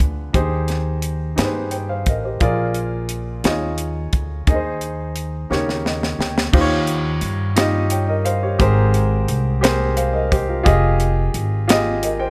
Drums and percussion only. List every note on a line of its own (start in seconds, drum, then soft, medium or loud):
0.00 kick medium
0.00 closed hi-hat medium
0.34 kick medium
0.34 closed hi-hat medium
0.68 snare soft
0.68 closed hi-hat soft
1.02 closed hi-hat medium
1.38 snare medium
1.38 closed hi-hat medium
1.71 closed hi-hat medium
2.06 kick medium
2.06 closed hi-hat medium
2.40 kick medium
2.40 closed hi-hat medium
2.74 closed hi-hat soft
3.09 closed hi-hat medium
3.44 snare medium
3.44 closed hi-hat medium
3.78 closed hi-hat medium
4.13 kick medium
4.13 closed hi-hat medium
4.47 kick medium
4.47 closed hi-hat medium
4.81 closed hi-hat soft
5.16 closed hi-hat medium
5.52 snare soft
5.69 snare soft
5.86 snare medium
6.03 snare medium
6.21 snare medium
6.38 snare medium
6.53 kick loud
6.53 crash medium
6.87 closed hi-hat soft
7.21 closed hi-hat soft
7.57 snare loud
7.57 closed hi-hat loud
7.90 closed hi-hat medium
8.26 closed hi-hat soft
8.60 kick loud
8.60 closed hi-hat medium
8.94 closed hi-hat soft
9.28 closed hi-hat soft
9.64 snare loud
9.64 closed hi-hat loud
9.97 closed hi-hat medium
10.32 kick medium
10.32 closed hi-hat soft
10.66 kick loud
10.66 closed hi-hat medium
11.00 closed hi-hat soft
11.34 closed hi-hat soft
11.69 snare loud
11.69 closed hi-hat loud
12.03 closed hi-hat medium